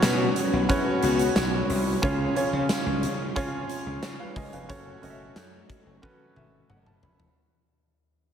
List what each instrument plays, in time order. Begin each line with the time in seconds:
Already playing: grand piano B2 C#4 F#4 B4 C#5, analog polysynth C#3 B3 F#4, string machine F#3 B3 C#4 F#4
0.03 slap bass B2, snare, closed hi-hat, tambourine
0.36 closed hi-hat
0.53 slap bass B1
0.69 analog polysynth G#3 E4 G#4, grand piano C#4 F#4 B4 C#5, kick, closed hi-hat
1.02 slap bass C#2, analog polysynth C#3 B3 F#4, closed hi-hat
1.19 closed hi-hat
1.36 slap bass B1, snare, closed hi-hat, tambourine
1.70 slap bass C2, open hi-hat
2.02 slap bass C#2, grand piano C#3 C#4 F4 G#4 C#5, string machine F3 G#3 F4, kick, closed hi-hat
2.36 grand piano C#4 F4 G#4 C#5, closed hi-hat
2.53 slap bass C#3
2.69 snare, closed hi-hat, tambourine
2.86 slap bass C#2
3.03 slap bass C#3, closed hi-hat
3.36 slap bass C#3, grand piano C#4 F4 G#4 C#5, kick, closed hi-hat
3.69 closed hi-hat
3.86 slap bass C#2
4.03 slap bass C#3, snare, closed hi-hat, tambourine
4.20 grand piano B4 F5
4.36 slap bass C#2, grand piano D#5 G#5, kick, open hi-hat
4.53 slap bass F1, grand piano B4 F5, closed hi-hat
4.69 slap bass F#1, string machine F#3 A3 F#4, grand piano C#4 F#4 A4 C#5, kick, closed hi-hat
5.02 slap bass F#1, grand piano C#4 F#4 A4 D#5, closed hi-hat
5.10 grand piano E5
5.36 slap bass F#2, snare, closed hi-hat, tambourine
5.70 kick, closed hi-hat
5.86 slap bass F#1
6.02 grand piano C#4 F#4 A4 B4, kick, high tom
6.36 slap bass G#1, grand piano E5, mid tom
6.70 slap bass F#1, grand piano F#5, mid tom
6.86 grand piano A5, mid tom
7.03 slap bass F1, grand piano B5, floor tom
7.20 floor tom